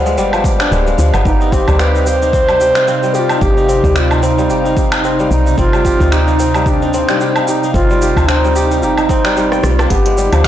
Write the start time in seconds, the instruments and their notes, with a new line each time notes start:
Already playing: fm bass D2, kora F3 G3 B3, ambient pad G4 B4 F5
0.06 kora G#3, shaker
0.18 fm bass G1, kora G3, shaker
0.33 kora F3, low woodblock, shaker
0.44 kora G4, kick, shaker
0.60 kora D4, finger snap, shaker
0.72 fm bass D1, kora G#3, shaker
0.87 kora G#3, shaker
0.99 fm bass D2, kora F3, shaker
1.14 fm bass G1, kora B3, low woodblock, shaker
1.25 fm bass G1, ambient pad C3 D#4, bansuri D#4, kora G4, kick, shaker
1.41 kora D#4, shaker
1.52 kora C4, bansuri G4, kick, shaker
1.68 fm bass D2, kora G3, kick, low woodblock, shaker
1.79 kora G4, bansuri B4, finger snap, shaker
1.95 kora D#4, shaker
2.07 kora G4, bansuri C5, shaker
2.22 kora D#4, shaker
2.33 kora C4, kick, shaker
2.49 kora G3, low woodblock, shaker
2.61 kora G4, shaker
2.75 kora D#4, finger snap, shaker
2.88 kora C4, shaker
3.03 kora G3, shaker
3.14 bansuri G4, kora G4, shaker
3.19 bansuri F4
3.29 kora D#4, low woodblock, shaker
3.41 fm bass G1, kora G4, bansuri G4, kick, shaker
3.57 kora D#4, shaker
3.68 kora C4, shaker
3.84 fm bass D2, kora G3, kick, shaker
3.96 bansuri F4 G4, kora G4, finger snap, shaker
4.11 kora D#4, low woodblock, shaker
4.23 kora C4, bansuri D#4, shaker
4.38 kora G3, shaker
4.50 fm bass G1, kora G4, shaker
4.65 kora D#4, shaker
4.77 kora G4, kick, shaker
4.92 kora D#4, finger snap, low woodblock, shaker
5.04 kora C4, shaker
5.20 kora G3, shaker
5.31 fm bass B1, bansuri D#4, kora G4, shaker
5.46 kora D#4, shaker
5.58 fm bass G1, kora C4, bansuri F4, kick, shaker
5.73 kora G3, low woodblock, shaker
5.85 kora G4, kick, shaker
6.00 fm bass D2, kora D#4, kick, shaker
6.12 bansuri D#4, kora G4, finger snap, shaker
6.28 kora D#4, shaker
6.39 kora C4, shaker
6.54 kora G3, low woodblock, shaker
6.66 bansuri D#4, kora G4, kick, shaker
6.70 bansuri D4
6.82 kora D#4, shaker
6.94 kora C4, shaker
7.09 kora G3, finger snap, shaker
7.21 kora G4, shaker
7.36 kora D#4, low woodblock, shaker
7.47 bansuri D#4, kora G4, shaker
7.63 kora D#4, shaker
7.73 fm bass G1, kora C4, bansuri F4, kick, shaker
7.90 kora G3, shaker
8.02 kora G4, shaker
8.17 fm bass D2, kora D#4, kick, low woodblock, shaker
8.27 kora C4, bansuri D4, finger snap, shaker
8.38 bansuri D#4
8.44 kora G3, shaker
8.56 kora G4, shaker
8.71 kora D#4, shaker
8.81 fm bass G1, bansuri D#4 F4, kora G4, shaker
8.98 kora D#4, low woodblock, shaker
9.09 kora C4, kick, shaker
9.25 kora G3, finger snap, shaker
9.37 kora G3, shaker
9.52 kora G5, cross-stick, shaker
9.63 fm bass B1, kora G3, bansuri F4, cross-stick, shaker
9.79 kora G4, cross-stick, low woodblock, shaker
9.90 fm bass G1, kora B3, ambient pad D4 G4 B4, bansuri G#4, kick, closed hi-hat, shaker
9.94 bansuri G4
10.06 kora G#3, closed hi-hat, shaker
10.18 kora G3, shaker
10.33 fm bass D2, kora F3, closed hi-hat, low woodblock, shaker
10.44 kora B3, finger snap, kick, closed hi-hat